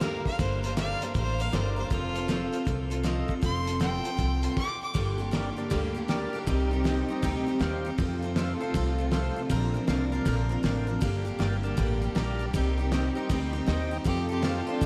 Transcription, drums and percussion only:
0.01 snare loud
0.01 closed hi-hat medium
0.26 kick medium
0.39 kick loud
0.39 closed hi-hat medium
0.64 closed hi-hat medium
0.77 snare loud
0.77 closed hi-hat medium
1.02 closed hi-hat medium
1.15 kick loud
1.15 closed hi-hat medium
1.40 closed hi-hat medium
1.53 snare loud
1.53 closed hi-hat medium
1.91 kick loud
1.91 closed hi-hat medium
2.16 closed hi-hat medium
2.29 snare loud
2.29 closed hi-hat medium
2.53 closed hi-hat medium
2.67 kick loud
2.67 closed hi-hat medium
2.91 closed hi-hat medium
3.04 snare loud
3.04 closed hi-hat medium
3.29 kick medium
3.43 kick loud
3.43 closed hi-hat medium
3.67 closed hi-hat medium
3.81 snare loud
3.81 closed hi-hat medium
4.05 closed hi-hat medium
4.19 kick loud
4.19 closed hi-hat medium
4.43 closed hi-hat medium
4.57 kick loud
4.57 crash medium
4.95 kick loud
4.95 open hi-hat medium
5.33 snare loud
5.33 open hi-hat medium
5.71 kick loud
5.71 open hi-hat medium
6.09 snare loud
6.09 open hi-hat medium
6.47 kick loud
6.47 open hi-hat medium
6.85 snare loud
6.85 open hi-hat medium
7.23 kick loud
7.23 open hi-hat medium
7.61 snare loud
7.61 open hi-hat medium
7.98 kick loud
7.98 open hi-hat medium
8.36 snare loud
8.36 open hi-hat soft
8.74 kick loud
8.74 open hi-hat medium
9.12 snare loud
9.12 open hi-hat medium
9.50 kick loud
9.50 open hi-hat medium
9.88 snare loud
9.88 open hi-hat medium
10.26 kick loud
10.26 open hi-hat medium
10.64 snare loud
10.64 open hi-hat medium
11.02 kick loud
11.02 open hi-hat medium
11.40 snare loud
11.40 open hi-hat medium
11.78 kick loud
11.78 open hi-hat soft
12.16 snare loud
12.16 open hi-hat medium
12.54 kick loud
12.54 open hi-hat medium
12.92 snare loud
12.92 open hi-hat medium
13.30 kick loud
13.30 open hi-hat medium
13.68 snare loud
13.68 open hi-hat medium
14.05 kick loud
14.05 open hi-hat medium
14.43 snare loud
14.43 open hi-hat medium
14.81 kick loud
14.81 open hi-hat medium

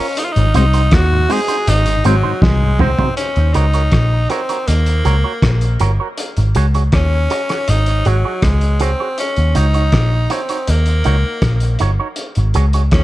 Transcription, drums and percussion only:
0.17 closed hi-hat loud
0.36 closed hi-hat soft
0.54 closed hi-hat medium
0.74 closed hi-hat soft
0.91 kick loud
0.91 cross-stick loud
0.91 closed hi-hat medium
1.30 open hi-hat medium
1.48 closed hi-hat medium
1.67 closed hi-hat loud
1.86 closed hi-hat medium
2.04 closed hi-hat medium
2.42 kick loud
2.42 snare medium
2.79 mid tom loud
2.99 floor tom loud
3.17 closed hi-hat loud
3.36 closed hi-hat soft
3.54 closed hi-hat medium
3.73 closed hi-hat soft
3.92 kick loud
3.92 cross-stick loud
3.92 closed hi-hat medium
4.30 closed hi-hat medium
4.49 closed hi-hat medium
4.68 closed hi-hat medium
4.86 closed hi-hat soft
5.05 closed hi-hat medium
5.42 kick loud
5.42 cross-stick loud
5.42 closed hi-hat medium
5.61 closed hi-hat soft
5.80 closed hi-hat medium
6.18 closed hi-hat loud
6.37 closed hi-hat soft
6.55 closed hi-hat medium
6.74 closed hi-hat soft
6.92 kick loud
6.92 cross-stick loud
6.92 closed hi-hat medium
7.30 closed hi-hat medium
7.49 cross-stick medium
7.49 closed hi-hat medium
7.68 closed hi-hat medium
7.86 closed hi-hat soft
8.05 closed hi-hat medium
8.42 kick loud
8.42 cross-stick loud
8.42 closed hi-hat medium
8.61 closed hi-hat soft
8.80 closed hi-hat medium
9.18 closed hi-hat medium
9.36 closed hi-hat soft
9.55 closed hi-hat medium
9.74 closed hi-hat soft
9.92 kick loud
9.92 cross-stick loud
9.92 closed hi-hat medium
10.30 closed hi-hat medium
10.49 closed hi-hat medium
10.67 closed hi-hat loud
10.86 closed hi-hat soft
11.04 closed hi-hat soft
11.42 kick loud
11.42 cross-stick loud
11.42 closed hi-hat medium
11.60 closed hi-hat medium
11.79 closed hi-hat medium
12.16 closed hi-hat medium
12.35 closed hi-hat soft
12.54 closed hi-hat medium
12.73 closed hi-hat soft
12.91 kick loud
12.91 cross-stick loud
12.91 closed hi-hat medium

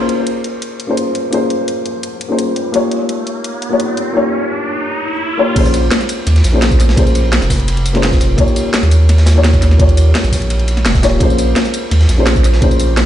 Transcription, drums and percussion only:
0.09 closed hi-hat medium
0.27 closed hi-hat medium
0.44 closed hi-hat medium
0.62 closed hi-hat medium
0.80 closed hi-hat medium
0.97 closed hi-hat loud
1.15 closed hi-hat medium
1.33 closed hi-hat medium
1.50 closed hi-hat medium
1.68 closed hi-hat medium
1.86 closed hi-hat medium
2.03 closed hi-hat medium
2.21 closed hi-hat medium
2.39 closed hi-hat medium
2.56 closed hi-hat medium
2.74 closed hi-hat medium
2.91 closed hi-hat medium
3.09 closed hi-hat medium
3.27 closed hi-hat medium
3.44 closed hi-hat medium
3.62 closed hi-hat medium
3.80 closed hi-hat medium
3.97 closed hi-hat medium
5.56 kick loud
5.56 closed hi-hat loud
5.56 crash loud
5.56 ride medium
5.65 tambourine soft
5.74 closed hi-hat medium
5.74 ride medium
5.74 tambourine medium
5.91 snare loud
5.91 closed hi-hat loud
5.91 ride medium
6.01 snare soft
6.01 tambourine soft
6.09 closed hi-hat medium
6.09 ride medium
6.09 tambourine medium
6.27 snare soft
6.27 closed hi-hat loud
6.27 ride medium
6.36 snare soft
6.36 closed hi-hat soft
6.44 snare soft
6.44 closed hi-hat medium
6.44 ride medium
6.44 tambourine medium
6.62 snare loud
6.62 closed hi-hat loud
6.62 ride medium
6.71 kick loud
6.71 ride soft
6.71 tambourine soft
6.80 snare soft
6.80 closed hi-hat medium
6.80 ride medium
6.80 tambourine medium
6.89 snare medium
6.89 snare soft
6.97 kick loud
6.97 closed hi-hat medium
6.97 ride medium
7.07 closed hi-hat soft
7.07 tambourine soft
7.15 closed hi-hat medium
7.15 ride medium
7.15 tambourine medium
7.32 snare loud
7.32 closed hi-hat medium
7.32 ride medium
7.42 snare soft
7.42 tambourine soft
7.50 kick medium
7.50 snare soft
7.50 open hi-hat medium
7.50 ride medium
7.50 tambourine medium
7.60 closed hi-hat soft
7.68 closed hi-hat medium
7.68 ride medium
7.77 closed hi-hat soft
7.86 closed hi-hat medium
7.86 ride medium
7.86 tambourine medium
7.95 snare medium
7.95 closed hi-hat soft
7.95 ride soft
8.03 snare loud
8.03 closed hi-hat medium
8.03 ride medium
8.12 kick loud
8.12 snare medium
8.12 tambourine soft
8.21 snare soft
8.21 closed hi-hat medium
8.21 ride medium
8.21 tambourine medium
8.38 kick loud
8.38 closed hi-hat medium
8.38 ride medium
8.48 tambourine soft
8.56 closed hi-hat medium
8.56 ride medium
8.56 tambourine medium
8.74 snare loud
8.74 closed hi-hat medium
8.74 ride medium
8.83 snare soft
8.83 tambourine soft
8.91 closed hi-hat medium
8.91 ride medium
8.91 tambourine medium
9.09 snare soft
9.09 closed hi-hat medium
9.09 ride medium
9.18 snare soft
9.18 closed hi-hat soft
9.26 snare loud
9.26 closed hi-hat medium
9.26 ride medium
9.26 tambourine medium
9.44 snare loud
9.44 closed hi-hat medium
9.44 ride medium
9.53 kick loud
9.53 ride soft
9.53 tambourine soft
9.62 snare soft
9.62 closed hi-hat medium
9.62 ride medium
9.62 tambourine medium
9.71 snare soft
9.79 kick loud
9.79 closed hi-hat medium
9.79 ride medium
9.89 closed hi-hat soft
9.89 tambourine soft
9.97 closed hi-hat medium
9.97 ride medium
9.97 tambourine medium
10.15 snare loud
10.15 closed hi-hat medium
10.15 ride medium
10.24 snare soft
10.24 tambourine soft
10.33 kick medium
10.33 snare soft
10.33 open hi-hat medium
10.33 ride medium
10.33 tambourine medium
10.42 closed hi-hat soft
10.50 closed hi-hat medium
10.50 ride medium
10.60 closed hi-hat soft
10.68 closed hi-hat medium
10.68 ride medium
10.68 tambourine medium
10.77 snare soft
10.77 closed hi-hat soft
10.77 ride soft
10.85 snare loud
10.85 closed hi-hat medium
10.85 ride medium
10.94 kick loud
10.94 snare medium
10.94 tambourine soft
11.03 snare loud
11.03 closed hi-hat medium
11.03 ride medium
11.03 tambourine medium
11.20 kick loud
11.20 closed hi-hat medium
11.20 ride medium
11.30 tambourine soft
11.38 closed hi-hat medium
11.38 ride medium
11.38 tambourine medium
11.56 snare loud
11.56 closed hi-hat medium
11.56 ride medium
11.65 snare soft
11.65 tambourine soft
11.74 closed hi-hat medium
11.74 ride medium
11.74 tambourine medium
11.91 snare soft
11.91 closed hi-hat medium
11.91 ride medium
12.01 snare soft
12.01 closed hi-hat soft
12.09 snare soft
12.09 closed hi-hat medium
12.09 ride medium
12.09 tambourine medium
12.26 snare loud
12.26 closed hi-hat medium
12.26 ride medium
12.36 kick loud
12.36 ride soft
12.36 tambourine soft
12.44 snare soft
12.44 closed hi-hat medium
12.44 ride medium
12.44 tambourine medium
12.53 snare medium
12.53 snare soft
12.62 kick loud
12.62 closed hi-hat medium
12.62 ride medium
12.71 closed hi-hat soft
12.71 tambourine soft
12.80 closed hi-hat medium
12.80 ride medium
12.80 tambourine medium
12.97 snare loud
12.97 closed hi-hat medium
12.97 ride medium

